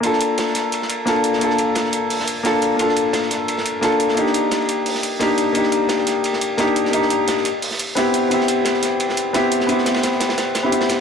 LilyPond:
<<
  \new Staff \with { instrumentName = "Grand piano" } { \time 4/4 \key bes \major \tempo 4 = 174 <bes d' f' a'>2. <bes d' f' a'>4 | <bes d' f' a'>2. <bes d' f' a'>4 | <bes d' f' a'>2. <bes d' f' a'>4 | <bes d' ees' g'>2. <bes d' ees' g'>4 |
<bes d' ees' g'>2. <bes d' ees' g'>4 | <bes d' ees' g'>4. r4. <b c' e' g'>4 | <b c' e' g'>2. <b c' e' g'>4 | <b c' e' g'>2~ <b c' e' g'>8. <b c' e' g'>16 <b c' e' g'>4 | }
  \new DrumStaff \with { instrumentName = "Drums" } \drummode { \time 4/4 <hh cymr>16 sn16 <hh cymr>8 <hh cymr sn>16 sn16 <hh cymr sn>8 <hh cymr>16 sn16 <hh cymr>8 <hh cymr sn>16 cymr16 <hh cymr>16 sn16 | <hh cymr>16 sn16 <hh cymr>8 <hh cymr sn>16 sn16 <hh cymr>8 <hh hho>16 sn16 <hh cymr>8 <hh cymr sn>8 <hh cymr>8 | <hh cymr>16 sn16 <hh cymr>8 <hh cymr sn>16 sn16 <hh cymr sn>8 <hh cymr>16 sn16 <hh cymr>8 <hh cymr sn>16 cymr16 <hh cymr>16 sn16 | <hh cymr>16 sn16 <hh cymr>8 <hh cymr sn>16 sn16 <hh cymr>8 <hh hho>16 sn16 <hh cymr>8 <hh cymr sn>8 <hh cymr>8 |
<hh cymr>16 sn16 <hh cymr>8 <hh cymr sn>16 sn16 <hh cymr sn>8 <hh cymr>16 sn16 <hh cymr>8 <hh cymr sn>16 cymr16 <hh cymr>16 sn16 | <hh cymr>16 sn16 <hh cymr>8 <hh cymr sn>16 sn16 <hh cymr>8 <hh hho>16 sn16 <hh cymr>8 <hh cymr sn>8 <hh cymr>8 | <hh cymr>16 sn16 <hh cymr>8 <hh cymr sn>16 sn16 <hh cymr sn>8 <hh cymr>16 sn16 <hh cymr>8 <hh cymr sn>16 cymr16 <hh cymr>16 sn16 | <hh cymr>16 sn16 <hh cymr sn>16 <cymr sn>16 <hh cymr sn>16 sn16 <hh cymr sn>16 <cymr sn>16 <hh cymr sn>8 <hh cymr sn>8 <hh cymr>16 <cymr sn>16 <hh cymr sn>8 | }
>>